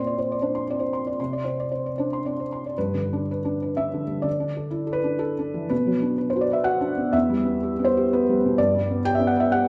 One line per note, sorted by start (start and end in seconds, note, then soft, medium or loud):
0.00 1.17 A#2 medium
0.00 0.34 C4 soft
0.00 0.14 C5 soft
0.00 0.07 D5 soft
0.00 0.55 C6 soft
0.07 0.18 D5 soft
0.18 0.37 C5 soft
0.32 0.50 D5 soft
0.42 0.83 D4 soft
0.42 0.62 C5 soft
0.55 0.75 C6 soft
0.70 1.10 C4 soft
0.70 0.89 D5 soft
0.79 1.00 C5 soft
0.93 1.14 C6 soft
1.07 1.19 D5 soft
1.20 2.72 C3 soft
1.20 1.40 C6 soft
1.33 1.53 D5 soft
1.45 1.87 C4 soft
1.45 1.66 C5 soft
1.60 1.72 D5 soft
1.72 1.92 C5 soft
1.86 2.06 D5 soft
1.98 2.40 D4 soft
1.98 2.18 C5 soft
2.13 2.32 C6 soft
2.25 2.66 C4 soft
2.25 2.46 D5 soft
2.40 2.59 C5 soft
2.52 2.72 C6 soft
2.66 2.77 D5 soft
2.78 4.23 G2 soft
2.78 3.30 B4 medium
2.94 3.20 D3 soft
3.13 3.38 D4 soft
3.31 3.55 B4 soft
3.45 3.71 D4 soft
3.62 3.87 B4 soft
3.77 4.03 D4 soft
3.77 4.26 E5 medium
3.94 4.20 D3 soft
4.07 4.25 G3 soft
4.22 5.66 D3 soft
4.22 4.96 D5 medium
4.40 4.67 D4 soft
4.57 4.83 A4 soft
4.71 4.98 E4 soft
4.87 5.14 A4 soft
4.93 5.20 B4 medium
5.04 5.31 D4 soft
5.19 5.69 A4 medium
5.39 5.65 D4 soft
5.54 5.71 E3 soft
5.70 7.10 B2 soft
5.70 6.16 B4 medium
5.87 6.12 F#3 soft
6.02 6.28 D4 soft
6.18 6.44 B4 soft
6.30 6.42 C5 medium
6.36 6.61 F#4 soft
6.41 6.54 D5 medium
6.51 6.76 B4 soft
6.51 6.66 E5 medium
6.64 6.91 F#4 soft
6.64 7.13 F#5 medium
6.81 7.07 D4 soft
6.97 7.14 B3 soft
7.13 8.53 E2 medium
7.13 7.85 E5 medium
7.30 7.55 G3 soft
7.45 7.71 B3 soft
7.63 7.88 G4 soft
7.79 8.04 B3 soft
7.85 8.09 C5 medium
7.97 8.21 G4 medium
8.13 8.37 B3 soft
8.13 8.59 B4 medium
8.29 8.53 G3 soft
8.46 8.59 B2 soft
8.58 9.68 G2 medium
8.58 9.05 D5 medium
8.75 8.99 G3 soft
8.90 9.15 B3 soft
9.05 9.31 G4 medium
9.05 9.17 G5 loud
9.15 9.28 E5 medium
9.20 9.46 B3 medium
9.27 9.40 F#5 medium
9.37 9.63 B4 medium
9.37 9.53 E5 medium
9.52 9.68 G4 medium
9.52 9.68 F#5 medium